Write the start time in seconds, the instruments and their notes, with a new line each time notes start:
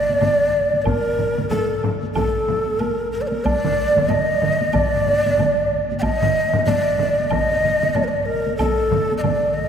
Already playing: shakuhachi D5
0.09 taiko high
0.21 taiko low-mid, taiko mid, taiko high, high woodblock
0.73 taiko high
0.82 shakuhachi A#4 D5, high woodblock
0.86 taiko, taiko low-mid, taiko mid, taiko high
1.18 taiko low-mid, taiko mid
1.38 taiko low-mid, taiko mid, taiko high
1.50 shakuhachi A4, taiko low-mid, taiko mid, taiko high, high woodblock
1.83 taiko low-mid, taiko mid, high woodblock
2.03 taiko high
2.15 shakuhachi A4, taiko, taiko low-mid, taiko mid, taiko high, high woodblock
2.48 taiko low-mid, taiko mid, taiko high
2.67 taiko high
2.79 shakuhachi A#4, taiko high, high woodblock
3.12 shakuhachi A#4
3.21 shakuhachi D5
3.27 shakuhachi A#4
3.32 taiko high
3.45 shakuhachi D5, taiko, taiko high, high woodblock
3.65 taiko low-mid, taiko mid
3.96 taiko low-mid, taiko mid, taiko high
4.09 shakuhachi D#5, taiko low-mid, taiko mid, taiko high, high woodblock
4.42 taiko low-mid, taiko mid
4.62 taiko high
4.73 shakuhachi D5, taiko, taiko low-mid, taiko mid, taiko high, high woodblock
4.94 taiko low-mid, taiko mid
5.06 taiko low-mid, taiko mid, taiko high
5.26 taiko low-mid, taiko mid, taiko high
5.38 taiko low-mid, taiko mid, taiko high, high woodblock
5.91 taiko high
5.99 shakuhachi D#5 G5, high woodblock
6.03 taiko, taiko high
6.22 taiko low-mid, taiko mid
6.54 taiko low-mid, taiko mid, taiko high
6.65 shakuhachi D5, taiko low-mid, taiko mid, taiko high, high woodblock
6.99 taiko low-mid, taiko mid
7.20 taiko high
7.30 shakuhachi D#5, taiko, taiko low-mid, taiko mid, taiko high, high woodblock
7.50 taiko low-mid, taiko mid
7.63 taiko low-mid, taiko mid, taiko high
7.82 taiko low-mid, taiko mid, taiko high
7.94 shakuhachi D5, taiko low-mid, taiko mid, taiko high, high woodblock
8.04 shakuhachi A#4
8.08 shakuhachi D5
8.23 shakuhachi A#4 D5
8.48 taiko high
8.57 shakuhachi A4, taiko, taiko high, high woodblock
8.91 taiko low-mid, taiko mid
9.12 taiko high
9.18 shakuhachi D5 D#5
9.24 taiko low-mid, taiko mid, taiko high, high woodblock
9.54 shakuhachi D#5